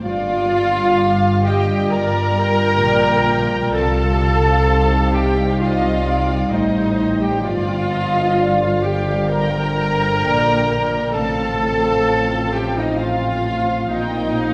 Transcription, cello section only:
0.04 2.78 G2 medium
2.83 3.74 A#2 medium
3.74 6.49 C3 medium
6.53 7.43 A2 medium
7.46 10.22 G2 medium
10.23 11.14 A#2 medium
11.15 13.91 A2 medium
13.91 14.54 A#2 medium

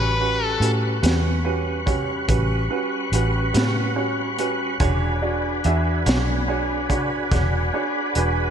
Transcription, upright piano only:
0.20 0.51 C#4 soft
0.20 0.51 F#4 soft
0.20 0.51 G4 soft
0.20 0.51 B4 medium
0.60 0.93 C#4 soft
0.60 0.93 F#4 soft
0.60 0.93 G4 soft
0.60 0.93 B4 medium
1.02 1.34 C#4 medium
1.02 1.35 F#4 medium
1.02 1.35 G4 soft
1.02 1.34 B4 medium
1.45 1.77 C#4 medium
1.45 1.77 F#4 medium
1.45 1.77 G4 soft
1.45 1.77 B4 medium
1.86 2.18 C#4 medium
1.86 2.18 F#4 soft
1.86 2.18 G4 soft
1.86 2.18 C#5 medium
2.28 2.60 C#4 medium
2.28 2.60 F#4 soft
2.28 2.60 G4 medium
2.28 2.60 B4 medium
2.70 3.02 C#4 medium
2.70 3.03 F#4 soft
2.70 3.02 G4 medium
2.70 3.02 B4 medium
3.13 3.45 C#4 medium
3.13 3.45 F#4 medium
3.13 3.45 G4 medium
3.13 3.45 B4 medium
3.53 3.86 C#4 medium
3.53 3.86 F#4 soft
3.53 3.86 G4 soft
3.53 3.86 B4 medium
3.96 4.28 C#4 medium
3.96 4.28 F#4 soft
3.96 4.28 G4 soft
3.96 4.28 C#5 medium
4.38 4.70 C#4 medium
4.38 4.70 F#4 medium
4.38 4.70 G4 medium
4.38 4.70 B4 medium
4.80 5.12 D4 medium
4.80 5.12 F#4 medium
4.80 5.12 G#4 medium
4.80 5.12 C#5 medium
5.22 5.54 D4 soft
5.22 5.54 F#4 soft
5.22 5.54 G#4 soft
5.22 5.54 D5 medium
5.65 5.96 D4 medium
5.65 5.96 F#4 medium
5.65 5.96 G#4 medium
5.65 5.96 E5 medium
6.06 6.38 D4 medium
6.06 6.38 F#4 medium
6.06 6.38 G#4 soft
6.06 6.38 C#5 medium
6.48 6.80 D4 medium
6.48 6.80 F#4 soft
6.48 6.80 G#4 medium
6.48 6.80 C#5 medium
6.89 7.21 D4 soft
6.89 7.21 F#4 soft
6.89 7.21 G#4 soft
6.89 7.21 C#5 medium
7.31 7.63 D4 soft
7.31 7.63 F#4 soft
7.31 7.63 G#4 soft
7.31 7.63 C#5 medium
7.73 8.05 D4 medium
7.73 8.05 F#4 soft
7.73 8.05 G#4 medium
7.73 8.05 C#5 medium
8.16 8.47 D4 medium
8.16 8.47 F#4 medium
8.16 8.47 G#4 soft
8.16 8.47 B4 medium

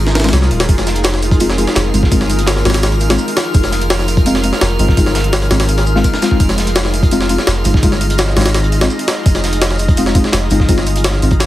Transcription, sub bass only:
0.00 0.32 G#1 loud
0.33 0.49 C2 loud
0.51 0.67 D#1 loud
0.69 1.66 F1 loud
1.76 1.92 F1 medium
1.94 2.64 G1 loud
2.65 3.17 G#1 loud
3.54 4.51 F1 loud
4.62 4.78 F1 loud
4.79 5.49 G1 loud
5.51 6.03 G#1 loud
6.40 7.37 F1 loud
7.47 7.63 F1 medium
7.65 8.35 G1 loud
8.36 8.89 G#1 loud
9.26 10.23 F1 loud
10.33 10.49 F1 medium
10.51 11.21 G1 loud
11.22 11.46 G#1 loud

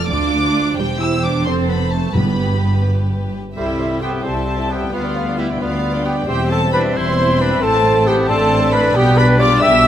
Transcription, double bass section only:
0.10 0.78 D2 medium
0.78 1.45 E1 medium
1.47 2.16 F1 medium
2.16 3.34 G1 medium
3.56 4.16 C2 medium
4.24 4.85 C2 medium
4.92 5.53 D2 medium
5.61 6.20 D2 medium
6.28 6.88 E1 medium
6.95 7.55 E1 medium
7.62 8.21 A1 medium
8.29 8.88 A1 medium
8.95 9.55 B1 medium
9.62 9.88 B1 medium

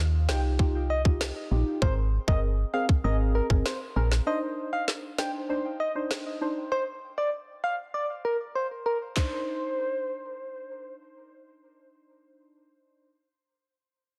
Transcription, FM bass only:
0.00 0.30 D#2 medium
0.29 1.32 C2 medium
1.51 1.63 A#1 loud
1.82 2.18 G#1 loud
2.28 2.64 G1 medium
3.04 3.41 G#1 loud
3.50 3.62 G1 medium
3.96 4.21 A#1 medium

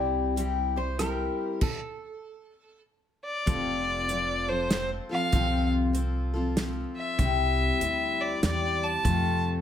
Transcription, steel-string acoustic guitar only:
0.00 0.38 C3 medium
0.00 0.35 G3 medium
0.00 0.36 C4 medium
0.00 0.38 E4 medium
0.00 0.38 G4 medium
0.36 0.77 G3 medium
0.36 0.77 C4 medium
0.36 0.77 E4 medium
0.36 0.75 G4 medium
0.76 0.98 C4 soft
0.76 1.00 E4 soft
0.76 0.99 G4 soft
0.99 1.61 G3 soft
0.99 1.62 C4 medium
0.99 1.62 E4 medium
0.99 1.63 G4 medium
3.46 4.08 F2 medium
3.46 4.08 C3 medium
3.46 4.07 F3 medium
3.46 4.09 C4 medium
3.46 4.09 F4 medium
3.46 4.09 A4 medium
4.08 4.48 F3 medium
4.08 4.48 C4 medium
4.08 4.47 F4 medium
4.08 4.46 A4 medium
4.48 4.69 F3 soft
4.48 4.70 C4 soft
4.48 4.71 F4 soft
4.48 4.70 A4 soft
4.70 5.10 F3 soft
4.70 5.11 C4 medium
4.70 5.10 F4 medium
4.70 5.08 A4 medium
5.09 5.33 F3 soft
5.09 5.33 C4 soft
5.09 5.33 F4 soft
5.09 5.32 A4 soft
5.33 5.94 F2 medium
5.33 5.95 C3 medium
5.33 5.92 F3 medium
5.33 5.94 C4 medium
5.33 5.94 F4 medium
5.33 5.95 A4 medium
5.93 6.34 F3 medium
5.93 6.34 C4 medium
5.93 6.34 F4 medium
5.93 6.32 A4 medium
6.34 6.55 F3 soft
6.34 6.57 C4 soft
6.34 6.57 F4 medium
6.34 6.56 A4 medium
6.57 7.18 F3 medium
6.57 7.19 C4 medium
6.57 7.19 F4 medium
6.57 7.20 A4 medium
7.18 7.80 C3 medium
7.18 7.79 G3 medium
7.18 7.81 C4 medium
7.18 7.81 E4 medium
7.18 7.81 G4 medium
7.80 8.40 G3 medium
7.80 8.43 C4 medium
7.80 8.42 E4 medium
7.80 8.43 G4 medium
8.41 9.04 G3 medium
8.41 9.05 C4 medium
8.41 9.05 E4 medium
8.41 9.05 G4 medium
9.03 9.61 F2 medium
9.03 9.61 C3 medium
9.03 9.61 F3 medium
9.03 9.61 A3 medium
9.03 9.61 C4 medium
9.03 9.61 A4 medium

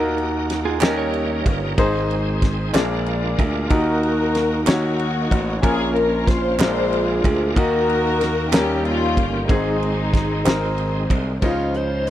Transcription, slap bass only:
0.00 0.78 D#2 loud
0.82 1.42 D#2 loud
1.46 1.75 G1 medium
1.78 2.70 G#1 loud
2.74 3.34 A#1 medium
3.39 3.68 D2 medium
3.70 4.63 D#2 loud
4.67 5.27 D#2 medium
5.31 5.61 A1 medium
5.63 6.56 A#1 loud
6.59 7.20 A#1 medium
7.24 7.54 D2 medium
7.56 8.49 D#2 loud
8.52 9.18 D#2 medium
9.17 9.47 G1 medium
9.49 10.42 G#1 loud
10.46 11.06 G#1 medium
11.10 11.40 C2 medium
11.42 12.10 C#2 medium

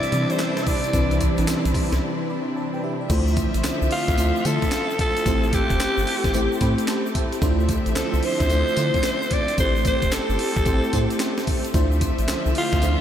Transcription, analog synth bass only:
0.12 0.26 C3 loud
0.94 1.28 C2 loud
1.38 1.46 A1 loud
1.48 1.55 B1 medium
1.65 1.73 B1 loud
1.92 2.00 C2 medium
3.10 3.45 D2 loud
3.55 3.62 A1 medium
3.64 3.71 C2 soft
3.82 3.89 C2 medium
4.08 4.16 D2 medium
4.18 4.32 D2 medium
4.45 4.59 D3 loud
5.26 5.61 A1 loud
5.70 5.78 E1 medium
5.80 5.87 G1 soft
5.98 6.05 G1 loud
6.24 6.32 A1 medium
6.34 6.48 A1 loud
6.61 6.75 A2 loud
7.42 7.77 D2 loud
7.86 7.94 A1 medium
7.96 8.03 C2 medium
8.14 8.21 C2 loud
8.40 8.48 D2 medium
8.50 8.64 D2 loud
8.77 8.91 D3 medium
9.58 9.93 A1 loud
10.02 10.10 E1 medium
10.12 10.19 G1 soft
10.29 10.37 G1 loud
10.56 10.64 A1 loud
10.66 10.80 A1 loud
10.93 11.07 A2 medium
11.74 12.09 D2 loud
12.19 12.26 A1 medium
12.28 12.35 C2 soft
12.46 12.53 C2 medium
12.73 12.80 D2 medium
12.82 12.96 D2 medium

